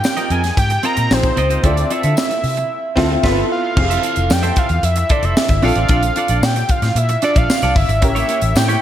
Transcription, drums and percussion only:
0.04 snare, tambourine
0.17 closed hi-hat
0.30 closed hi-hat
0.44 snare, closed hi-hat
0.57 kick, closed hi-hat
0.70 closed hi-hat
0.83 closed hi-hat
0.97 closed hi-hat
1.11 snare, tambourine
1.23 kick, closed hi-hat
1.37 closed hi-hat
1.50 closed hi-hat
1.64 kick, closed hi-hat
1.77 closed hi-hat
1.90 closed hi-hat
2.03 closed hi-hat
2.17 snare, tambourine
2.31 closed hi-hat
2.44 open hi-hat
2.57 closed hi-hat
2.97 kick, snare, crash
3.23 kick, snare, crash
3.77 kick, crash
3.91 closed hi-hat
4.03 closed hi-hat
4.16 closed hi-hat
4.30 snare, tambourine
4.43 closed hi-hat
4.56 kick, closed hi-hat
4.69 closed hi-hat
4.83 closed hi-hat
4.96 closed hi-hat
5.09 kick, closed hi-hat
5.23 closed hi-hat
5.37 snare, tambourine
5.49 kick, closed hi-hat
5.62 open hi-hat
5.76 closed hi-hat
5.89 kick, closed hi-hat
6.03 closed hi-hat
6.16 closed hi-hat
6.28 closed hi-hat
6.43 snare, tambourine
6.56 closed hi-hat
6.69 kick, closed hi-hat
6.82 snare, closed hi-hat
6.96 closed hi-hat
7.09 closed hi-hat
7.22 closed hi-hat
7.36 kick, closed hi-hat
7.50 snare, tambourine
7.62 closed hi-hat
7.76 kick, open hi-hat
7.89 closed hi-hat
8.02 kick, closed hi-hat
8.16 closed hi-hat
8.29 closed hi-hat
8.41 closed hi-hat
8.55 snare, tambourine
8.69 closed hi-hat

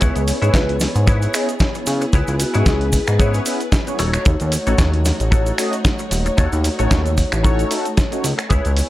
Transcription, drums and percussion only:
0.01 kick, closed hi-hat, cabasa
0.16 closed hi-hat, cabasa
0.28 open hi-hat, cabasa
0.42 closed hi-hat, cabasa
0.54 kick, snare, closed hi-hat, cabasa
0.69 closed hi-hat
0.80 snare, open hi-hat, cabasa
0.95 closed hi-hat, cabasa
1.07 kick, closed hi-hat, cabasa
1.22 closed hi-hat, cabasa
1.34 finger snap, open hi-hat, cabasa
1.49 closed hi-hat, cabasa
1.60 kick, snare, closed hi-hat, cabasa
1.75 closed hi-hat, cabasa
1.86 open hi-hat, cabasa
2.01 closed hi-hat, cabasa
2.13 kick, closed hi-hat, cabasa
2.28 closed hi-hat, cabasa
2.40 open hi-hat, cabasa
2.54 closed hi-hat, cabasa
2.66 kick, snare, closed hi-hat, cabasa
2.81 closed hi-hat
2.92 kick, open hi-hat, cabasa
3.07 finger snap, closed hi-hat, cabasa
3.19 kick, closed hi-hat, cabasa
3.34 closed hi-hat, cabasa
3.46 open hi-hat, cabasa
3.60 closed hi-hat, cabasa
3.72 kick, snare, closed hi-hat, cabasa
3.87 closed hi-hat, cabasa
3.99 open hi-hat, cabasa
4.14 finger snap, closed hi-hat, cabasa
4.25 kick, closed hi-hat, cabasa
4.40 closed hi-hat, cabasa
4.52 open hi-hat, cabasa
4.67 closed hi-hat, cabasa
4.78 kick, snare, closed hi-hat, cabasa
4.93 closed hi-hat
5.05 snare, open hi-hat, cabasa
5.20 closed hi-hat, cabasa
5.32 kick, closed hi-hat, cabasa
5.46 closed hi-hat, cabasa
5.58 finger snap, open hi-hat, cabasa
5.73 closed hi-hat, cabasa
5.85 kick, snare, closed hi-hat, cabasa
5.99 closed hi-hat, cabasa
6.11 open hi-hat, cabasa
6.26 closed hi-hat, cabasa
6.38 kick, closed hi-hat, cabasa
6.53 closed hi-hat, cabasa
6.64 open hi-hat, cabasa
6.79 closed hi-hat, cabasa
6.91 kick, snare, closed hi-hat, cabasa
7.06 closed hi-hat, cabasa
7.17 kick, open hi-hat, cabasa
7.32 finger snap, closed hi-hat, cabasa
7.44 kick, closed hi-hat, cabasa
7.59 closed hi-hat, cabasa
7.71 open hi-hat, cabasa
7.85 closed hi-hat, cabasa
7.97 kick, snare, closed hi-hat, cabasa
8.12 closed hi-hat, cabasa
8.24 open hi-hat, cabasa
8.39 finger snap, closed hi-hat, cabasa
8.50 kick, closed hi-hat, cabasa
8.65 closed hi-hat, cabasa
8.77 open hi-hat, cabasa

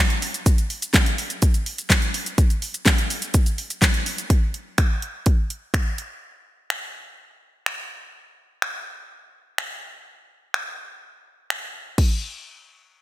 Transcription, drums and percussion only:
0.10 closed hi-hat, shaker
0.22 open hi-hat, shaker
0.34 closed hi-hat, shaker
0.46 kick, closed hi-hat, shaker
0.58 closed hi-hat, shaker
0.70 open hi-hat, shaker
0.82 closed hi-hat, shaker
0.94 kick, snare, clap, closed hi-hat, shaker
1.06 closed hi-hat, shaker
1.18 open hi-hat, shaker
1.30 closed hi-hat, shaker
1.42 kick, closed hi-hat, shaker
1.54 closed hi-hat, shaker
1.66 open hi-hat, shaker
1.78 closed hi-hat, shaker
1.90 kick, snare, clap, closed hi-hat, shaker
2.02 closed hi-hat, shaker
2.14 open hi-hat, shaker
2.26 closed hi-hat, shaker
2.38 kick, closed hi-hat, shaker
2.50 closed hi-hat, shaker
2.62 open hi-hat, shaker
2.74 closed hi-hat, shaker
2.86 kick, snare, clap, closed hi-hat, shaker
2.98 closed hi-hat, shaker
3.10 open hi-hat, shaker
3.22 closed hi-hat, shaker
3.34 kick, closed hi-hat, shaker
3.46 closed hi-hat, shaker
3.58 open hi-hat, shaker
3.70 closed hi-hat, shaker
3.82 kick, snare, clap, closed hi-hat, shaker
3.94 closed hi-hat, shaker
4.06 open hi-hat, shaker
4.18 closed hi-hat, shaker
4.30 kick, closed hi-hat
4.54 closed hi-hat
4.78 finger snap, kick, closed hi-hat
5.02 closed hi-hat
5.26 kick, closed hi-hat
5.50 closed hi-hat
5.74 finger snap, kick, closed hi-hat
5.98 closed hi-hat
6.70 finger snap
7.66 finger snap
8.62 finger snap
9.58 finger snap
10.54 finger snap
11.50 finger snap
11.98 kick, crash

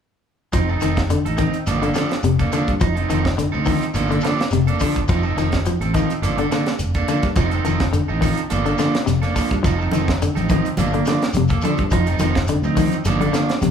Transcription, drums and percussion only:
0.53 kick, closed hi-hat, shekere
0.69 shekere
0.81 closed hi-hat, shekere
0.96 kick, snare, closed hi-hat, shekere
1.10 closed hi-hat, shekere
1.26 closed hi-hat, shekere
1.38 kick, closed hi-hat, shekere
1.53 closed hi-hat, shekere
1.67 closed hi-hat, shekere
1.82 closed hi-hat, shekere
1.94 snare, closed hi-hat, shekere
2.09 snare, closed hi-hat, shekere
2.23 closed hi-hat, shekere
2.39 kick, closed hi-hat, shekere
2.52 closed hi-hat, shekere
2.67 kick, closed hi-hat, shekere
2.80 kick, closed hi-hat, shekere
2.96 closed hi-hat, shekere
3.10 closed hi-hat, shekere
3.25 kick, snare, closed hi-hat, shekere
3.38 closed hi-hat, shekere
3.54 shekere
3.65 kick, open hi-hat, shekere
3.82 closed hi-hat, shekere
3.94 closed hi-hat, shekere
4.08 closed hi-hat, shekere
4.21 closed hi-hat, shekere
4.25 snare
4.38 snare, closed hi-hat, shekere
4.51 closed hi-hat, shekere
4.67 closed hi-hat, shekere
4.80 kick, open hi-hat, shekere
4.96 kick, closed hi-hat, shekere
5.08 kick, closed hi-hat, shekere
5.23 shekere
5.38 snare, closed hi-hat, shekere
5.52 kick, snare, closed hi-hat, shekere
5.66 closed hi-hat, shekere
5.81 closed hi-hat, shekere
5.94 kick, closed hi-hat, shekere
6.10 closed hi-hat, shekere
6.23 closed hi-hat, shekere
6.38 closed hi-hat, shekere
6.52 snare, closed hi-hat, shekere
6.66 snare, closed hi-hat, shekere
6.79 closed hi-hat, shekere
6.95 kick, closed hi-hat, shekere
7.08 closed hi-hat, shekere
7.23 kick, snare, closed hi-hat, shekere
7.36 kick, closed hi-hat, shekere
7.51 closed hi-hat, shekere
7.65 closed hi-hat, shekere
7.80 kick, snare, closed hi-hat, shekere
7.93 closed hi-hat, shekere
8.09 shekere
8.22 kick, snare, open hi-hat, shekere
8.37 closed hi-hat, shekere
8.50 closed hi-hat, shekere
8.66 closed hi-hat, shekere
8.78 snare, closed hi-hat, shekere
8.95 snare, closed hi-hat, shekere
9.07 snare, closed hi-hat, shekere
9.23 snare, closed hi-hat, shekere
9.36 kick, open hi-hat, shekere
9.51 kick, closed hi-hat, shekere
9.64 kick, closed hi-hat, shekere
9.81 shekere
9.92 closed hi-hat, high conga, shekere
10.08 kick, snare, closed hi-hat, shekere
10.22 closed hi-hat, shekere
10.36 closed hi-hat, high conga, shekere
10.49 kick, closed hi-hat, high conga, shekere
10.65 closed hi-hat, shekere
10.77 closed hi-hat, high conga, shekere
10.93 closed hi-hat, shekere
11.05 snare, closed hi-hat, shekere
11.21 snare, closed hi-hat, shekere
11.33 closed hi-hat, high conga, shekere
11.48 kick, closed hi-hat, shekere
11.62 closed hi-hat, high conga, shekere
11.77 kick, closed hi-hat, high conga, shekere
11.90 kick, closed hi-hat, shekere
12.06 closed hi-hat, shekere
12.19 snare, closed hi-hat, high conga, shekere
12.35 kick, snare, closed hi-hat, shekere
12.47 closed hi-hat, shekere
12.64 high conga, shekere
12.77 kick, open hi-hat, high conga, shekere
12.92 closed hi-hat, shekere
13.05 closed hi-hat, high conga, shekere
13.20 closed hi-hat, high conga, shekere
13.34 snare, closed hi-hat, shekere
13.49 snare, closed hi-hat, shekere
13.62 snare, closed hi-hat, high conga, shekere

